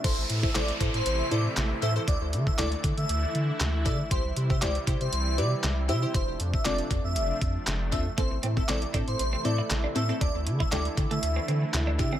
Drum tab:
CC |x---------------|----------------|----------------|----------------|
HH |x-x-xxxxx-x-x-x-|x-x-xxxxx-x-x-x-|x-x-xxxxx-x-x-x-|x-x-xxx-x-x-x-x-|
CP |----x-------x---|----x-------x---|----x-------x---|----x-------x---|
SD |----o-------o---|----o-------o---|----o-------o---|----o-------o---|
BD |o--o--o---------|o--o--o-------o-|o--o--o---------|o--o--o---o---o-|

CC |----------------|----------------|
HH |x-x-xxxxx-x-x-x-|x-x-xxxxx-x-x-x-|
CP |----x-------x---|----x-------x---|
SD |----o-------o---|----o-------o---|
BD |o--o--o---------|o--o--o-------o-|